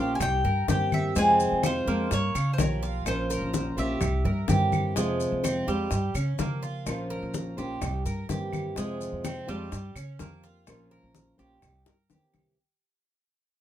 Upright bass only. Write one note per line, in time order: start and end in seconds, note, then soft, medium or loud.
0.00 0.19 A#1 medium
0.21 0.43 C2 loud
0.44 0.67 G2 loud
0.68 1.13 G2 medium
1.16 1.50 F2 loud
1.52 1.86 F2 medium
1.87 2.10 F2 medium
2.11 2.34 G2 loud
2.35 2.57 C#3 loud
2.59 3.04 B1 medium
3.06 3.40 A#1 medium
3.42 3.76 A#1 medium
3.77 4.00 A#1 medium
4.01 4.24 C2 loud
4.24 4.47 G2 loud
4.49 4.94 G2 medium
4.96 5.30 F2 medium
5.32 5.66 F2 medium
5.68 5.90 F2 medium
5.91 6.14 G2 loud
6.15 6.38 C#3 loud
6.39 6.84 C#3 medium
6.86 7.20 A#1 loud
7.22 7.56 A#1 medium
7.58 7.81 A#1 medium
7.81 8.04 C2 loud
8.05 8.28 G2 loud
8.29 8.75 G2 medium
8.77 9.11 F2 medium
9.13 9.47 F2 medium
9.48 9.71 F2 medium
9.72 9.95 G2 loud
9.96 10.18 C#3 loud
10.20 10.65 F2 medium
10.68 11.01 A#1 loud
11.03 11.37 A#1 medium
11.39 11.61 A#1 medium
11.63 11.85 C2 loud
11.86 12.08 G2 medium
12.10 12.32 E2 medium
12.34 12.55 C2 medium